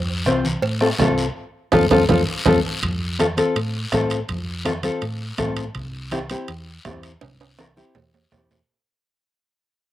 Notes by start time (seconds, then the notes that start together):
Already playing: F2
0.25 C2 C4 F4 C5, bombo rim, high conga, short guiro
0.45 high conga, short guiro
0.62 A2, cowbell, long guiro
0.81 C4 F4 A4, bombo rim
0.99 C2 C4 F4 A4, bombo low, bombo rim, high conga, low timbale, short guiro
1.18 short guiro
1.72 F2 C4 F4 A4, bombo low, high conga, high timbale, long guiro
1.90 F2 C4 F4 A4, bombo low, high conga, high timbale, long guiro
2.09 F2 C4 F4 A4, bombo low, high conga, high timbale, long guiro
2.46 F2 C4 F4 A4, bombo low, high conga, high timbale, long guiro
2.82 F2, bombo low, high timbale, long guiro
3.19 C4 F4 A4, bombo rim, high conga, high timbale, short guiro
3.37 C4 F4 A4, high conga, high timbale, short guiro
3.56 A2, high timbale, long guiro
3.92 A2 C4 F4 A4, bombo low, bombo rim, high conga, high timbale, short guiro
4.10 high timbale, short guiro
4.29 F2, bombo low, high timbale, long guiro
4.65 C4 F4 A4, bombo rim, high conga, high timbale, short guiro
4.83 C4 F4 A4, high conga, high timbale, short guiro
5.01 A2, high timbale, long guiro
5.38 A2 C4 F4 A4, bombo low, bombo rim, high conga, high timbale, short guiro
5.57 high timbale, short guiro
5.75 C2, bombo low, high timbale, long guiro
6.11 C4 E4 G4, bombo rim, high conga, high timbale, short guiro
6.30 C4 E4 G4, high timbale, short guiro
6.48 E2, high timbale, long guiro
6.85 E2 C4 E4 G4, bombo low, bombo rim, high conga, high timbale, low timbale, short guiro
7.03 high timbale, short guiro
7.21 C2, bombo low, high timbale, long guiro
7.41 high timbale
7.59 C4 E4 A#4, bombo rim, high conga, high timbale, short guiro
7.76 C4 E4 G4, high conga, short guiro
7.95 E2, low conga, low timbale, long guiro
8.14 low timbale
8.32 E2 C4 E4 G4, bombo low, bombo rim, low conga, low timbale, short guiro
8.50 low conga, low timbale, short guiro